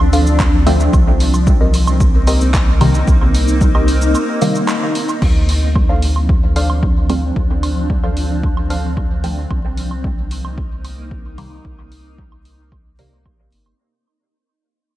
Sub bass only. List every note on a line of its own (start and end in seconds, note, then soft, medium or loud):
0.00 0.89 D2 loud
0.93 3.03 C2 loud
3.08 4.15 C2 loud
5.22 7.32 D2 loud
7.36 9.46 D2 loud
9.51 11.60 C2 loud
11.65 13.25 C2 medium
13.26 13.47 A#1 medium
13.52 13.74 G1 loud